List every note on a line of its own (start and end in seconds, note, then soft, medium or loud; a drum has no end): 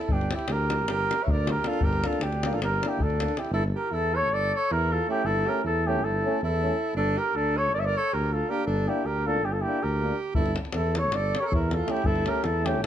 0.00 0.13 E4 medium
0.00 0.14 A4 medium
0.00 davul high soft
0.08 0.30 G1 loud
0.08 0.32 D4 medium
0.08 davul low medium
0.12 0.33 G4 medium
0.21 davul high soft
0.31 0.51 E4 medium
0.31 davul high medium
0.35 0.53 G4 medium
0.35 davul high soft
0.48 0.89 D2 medium
0.48 0.88 G4 medium
0.48 0.90 A#4 medium
0.48 davul high medium
0.70 davul high medium
0.87 1.10 G1 medium
0.87 1.25 G4 medium
0.87 davul high medium
0.92 1.25 A#4 medium
1.11 davul high medium
1.23 1.33 C#5 medium
1.23 1.32 E5 medium
1.27 1.56 D2 loud
1.27 1.52 D5 medium
1.27 davul low medium
1.31 1.52 A#4 medium
1.47 1.69 G4 medium
1.47 1.68 A#4 medium
1.47 davul high medium
1.64 1.79 A#3 medium
1.64 1.81 D4 medium
1.64 1.84 F4 medium
1.64 1.86 A4 medium
1.64 davul high medium
1.73 davul high soft
1.80 2.02 G1 loud
1.80 2.06 G4 medium
1.80 davul low loud
1.85 2.08 A#4 medium
1.93 davul high soft
2.04 2.20 A#3 medium
2.04 2.20 D4 medium
2.04 2.24 F4 medium
2.04 2.24 A4 medium
2.04 davul high medium
2.13 davul high soft
2.19 2.60 D2 medium
2.19 2.56 D4 medium
2.19 2.55 G4 medium
2.19 davul high medium
2.32 davul high soft
2.43 2.60 A#3 medium
2.43 2.59 D4 medium
2.43 davul high medium
2.53 2.62 F4 medium
2.53 2.61 A4 medium
2.53 davul high soft
2.59 2.81 G1 medium
2.59 2.87 G4 medium
2.59 davul high medium
2.63 2.89 A#4 medium
2.82 2.99 A#3 medium
2.82 2.97 D4 medium
2.82 3.05 E4 medium
2.82 davul high medium
2.87 3.03 G4 medium
2.98 3.28 D2 loud
2.98 3.40 A4 medium
2.98 davul low medium
3.03 3.41 D4 medium
3.10 davul high soft
3.19 3.33 A#3 soft
3.19 3.33 D4 medium
3.19 davul high medium
3.28 davul high soft
3.37 3.53 E4 medium
3.37 3.53 G4 medium
3.37 davul high medium
3.45 davul high soft
3.50 3.73 G1 loud
3.50 3.63 E4 medium
3.50 3.63 A4 medium
3.75 3.93 G4 medium
3.75 3.95 A#4 medium
3.91 4.32 E2 medium
3.91 4.16 E4 medium
3.91 4.17 A4 medium
4.14 4.32 A4 medium
4.14 4.34 C#5 loud
4.30 4.53 G1 medium
4.30 4.55 A4 medium
4.30 4.57 D5 medium
4.55 4.74 A4 medium
4.55 4.73 C#5 medium
4.71 5.00 E2 loud
4.71 4.93 E4 medium
4.71 4.94 A#4 loud
4.92 5.08 F4 medium
4.92 5.08 A4 medium
5.08 5.24 A3 medium
5.08 5.24 C#4 medium
5.08 5.25 E4 medium
5.08 5.27 G4 medium
5.23 5.45 G1 loud
5.23 5.48 E4 medium
5.23 5.50 A4 medium
5.45 5.61 A3 medium
5.45 5.63 C#4 medium
5.45 5.63 G4 medium
5.45 5.65 A#4 medium
5.64 6.05 E2 medium
5.64 5.86 E4 medium
5.64 5.88 A4 medium
5.86 6.02 A3 medium
5.86 6.03 C#4 medium
5.86 6.03 E4 medium
5.86 6.05 G4 medium
6.03 6.25 G1 medium
6.03 6.43 E4 medium
6.03 6.43 A4 medium
6.25 6.40 A3 medium
6.25 6.40 C#4 medium
6.42 6.71 E2 loud
6.42 6.91 E4 medium
6.42 6.92 A4 medium
6.62 6.75 A3 medium
6.62 6.76 C#4 medium
6.94 7.16 G1 loud
6.94 7.19 D4 medium
6.94 7.19 A4 medium
7.18 7.37 G4 medium
7.18 7.37 A#4 medium
7.34 7.76 D2 medium
7.34 7.60 D4 medium
7.34 7.58 A4 loud
7.57 7.74 A4 medium
7.57 7.73 C#5 loud
7.74 7.96 G1 medium
7.74 7.82 A#4 medium
7.74 7.81 D5 loud
7.79 7.88 C#5 medium
7.79 7.86 E5 medium
7.84 7.99 A#4 medium
7.84 7.98 D5 loud
7.96 8.15 A4 medium
7.96 8.15 C#5 loud
8.13 8.42 D2 loud
8.13 8.34 G4 medium
8.13 8.34 A#4 medium
8.33 8.52 F4 medium
8.33 8.51 A4 medium
8.49 8.65 A#3 medium
8.49 8.64 D4 medium
8.49 8.66 G4 medium
8.49 8.65 A#4 medium
8.65 8.87 G1 loud
8.65 8.91 D4 medium
8.65 8.89 A4 medium
8.87 9.03 A#3 medium
8.87 9.03 D4 medium
8.87 9.07 E4 medium
8.87 9.07 G4 medium
9.05 9.45 D2 medium
9.05 9.28 G4 medium
9.05 9.28 A#4 medium
9.26 9.42 A#3 medium
9.26 9.42 D4 medium
9.26 9.47 F4 medium
9.26 9.46 A4 loud
9.43 9.65 G1 medium
9.43 9.53 D4 medium
9.43 9.54 G4 medium
9.52 9.61 F4 medium
9.52 9.63 A4 medium
9.60 9.83 E4 medium
9.60 9.84 G4 medium
9.65 9.80 A#3 medium
9.65 9.81 D4 medium
9.81 10.12 D2 medium
9.81 10.34 G4 medium
9.81 10.19 A#4 medium
10.01 10.14 A#3 soft
10.01 10.15 D4 medium
10.34 10.56 G1 loud
10.34 10.56 E4 medium
10.34 10.55 A4 medium
10.34 davul low medium
10.46 davul high soft
10.56 davul high medium
10.65 davul high soft
10.72 11.13 E2 loud
10.72 10.98 E4 medium
10.72 10.99 A4 medium
10.72 davul high medium
10.95 11.14 A4 medium
10.95 11.16 C#5 medium
10.95 davul high medium
11.11 11.33 G1 medium
11.11 11.36 A4 medium
11.11 11.40 D5 medium
11.11 davul high medium
11.35 11.42 A4 medium
11.35 11.43 C#5 medium
11.35 davul high medium
11.41 11.47 G4 medium
11.41 11.48 A#4 medium
11.46 11.56 A4 medium
11.46 11.56 C#5 medium
11.51 11.80 E2 loud
11.51 11.76 E4 medium
11.51 11.75 A#4 medium
11.51 davul low medium
11.71 11.91 F4 medium
11.71 11.92 A4 medium
11.71 davul high medium
11.85 12.01 A3 medium
11.85 12.04 C#4 soft
11.85 davul high medium
11.90 12.05 E4 medium
11.90 12.08 G4 medium
11.97 davul high soft
12.03 12.25 G1 loud
12.03 12.29 E4 medium
12.03 12.30 A4 medium
12.03 davul low medium
12.16 davul high soft
12.24 12.40 A3 medium
12.24 12.42 C#4 medium
12.24 12.47 G4 medium
12.24 davul high medium
12.29 12.45 A#4 medium
12.35 davul high soft
12.43 12.84 E2 medium
12.43 12.67 E4 medium
12.43 12.67 A4 medium
12.43 davul high medium
12.63 12.79 A3 medium
12.63 12.81 C#4 medium
12.63 12.82 E4 medium
12.63 12.83 G4 medium
12.63 davul high medium
12.82 12.86 G1 medium
12.82 12.86 E4 medium
12.82 12.86 A4 medium